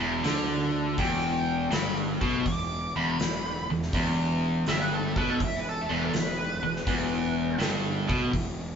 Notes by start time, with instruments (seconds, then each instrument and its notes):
0.00 fingered electric bass E1, overdriven electric guitar E2
0.24 fingered electric bass D2, overdriven electric guitar D3, snare, open hi-hat
0.98 fingered electric bass E1, overdriven electric guitar E2, lead electric guitar G5, kick, open hi-hat
1.72 fingered electric bass G1, overdriven electric guitar G2, lead electric guitar B5, snare, open hi-hat
2.21 fingered electric bass B1, overdriven electric guitar B2, kick
2.46 fingered electric bass E1, overdriven electric guitar E2, lead electric guitar D6, kick, open hi-hat
2.96 fingered electric bass E1, overdriven electric guitar E2, lead electric guitar B5
3.19 fingered electric bass E1, overdriven electric guitar E2, snare, open hi-hat
3.70 fingered electric bass E1, overdriven electric guitar E2
3.82 snare
3.93 fingered electric bass E1, overdriven electric guitar E2, kick, open hi-hat
4.66 fingered electric bass G1, overdriven electric guitar G2, lead electric guitar E5, snare, open hi-hat
4.82 lead electric guitar B4
4.94 lead electric guitar A4
5.06 lead electric guitar E5
5.16 fingered electric bass B1, overdriven electric guitar B2, lead electric guitar B4, kick
5.30 lead electric guitar A4
5.40 fingered electric bass E1, overdriven electric guitar E2, lead electric guitar E5, kick, open hi-hat
5.56 lead electric guitar B4
5.69 lead electric guitar A4
5.81 lead electric guitar E5
5.89 fingered electric bass E1, overdriven electric guitar E2
5.94 lead electric guitar B4
6.05 lead electric guitar A4
6.13 fingered electric bass E1, overdriven electric guitar E2, snare, open hi-hat
6.18 lead electric guitar B4
6.63 fingered electric bass E1, overdriven electric guitar E2
6.76 snare
6.87 fingered electric bass E1, overdriven electric guitar E2, kick, open hi-hat
7.59 fingered electric bass G1, overdriven electric guitar G2, snare, open hi-hat
8.08 fingered electric bass B1, overdriven electric guitar B2, kick
8.32 fingered electric bass E1, overdriven electric guitar E2, kick, open hi-hat